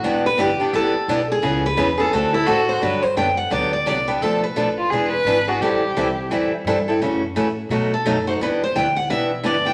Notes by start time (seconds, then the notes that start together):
Already playing: F#4
0.03 E1 E3 B3 D4 G4
0.26 B4
0.38 G1 E3 B3 D4 G4
0.59 B3 D4 G4, muted upright bass stroke
0.73 A1 E3 B3 D4 G4 A4
0.94 muted upright bass stroke
1.08 B1 E3 B3 D4 G4
1.32 G#4
1.42 C#2 C#3 E3 B3 C#4 G#4
1.66 B4
1.77 E2 C#3 E3 B3 C#4 G#4
1.98 B3 C#4 G#4 A4
2.12 D2 D3 A3 C4 F#4 A4
2.33 E4 A4
2.47 A2 D3 A3 C4 F#4 A4
2.69 C5
2.81 G2 D3 F#3 B3 D4 G4 B4
3.02 C5
3.16 F#2 D3 F#3 B3 D4 G4 G5
3.37 F#5
3.50 D2 D3 F#3 B3 D4 G4 D5
3.73 D5
3.86 C2 D3 F#3 B3 D4 G4 D5
4.07 B3 D4 G4 B4
4.21 B1 B2 F3 A3 D4 A4
4.43 B4
4.56 A1 B2 F3 A3 D4 A4
4.78 F4
4.90 E1 E3 B3 D4 G#4
5.12 B4
5.25 G#1 E3 B3 D4 G#4
5.47 B3 D4 F#4 G#4
5.60 A1 E3 G3 C4 E4 G4 A4
5.95 C2 E3 G3 C4 E4 A4
6.29 E2 E3 G3 C4 E4 A4
6.50 muted upright bass stroke
6.64 G2 E3 G3 C4 E4 A4
6.88 C4 E4 A4
7.00 F#2 C#3 E3 A3 C#4 F#4
7.35 A2 C#3 E3 A3 C#4 F#4
7.69 B2 F#3 A3 D#4 F#4
7.94 A4
8.05 F#2 B2 F#3 A3 D#4 F#4
8.27 A3 D#4 F#4 C5
8.40 E2 E3 B3 D4 G4 B4
8.63 C5
8.75 D2 E3 B3 D4 G4 G5
8.96 F#5
9.10 B1 E3 B3 D4 G4 E5
9.43 G1 E3 B3 D4 G4 D5
9.65 B3 D4 G4 G5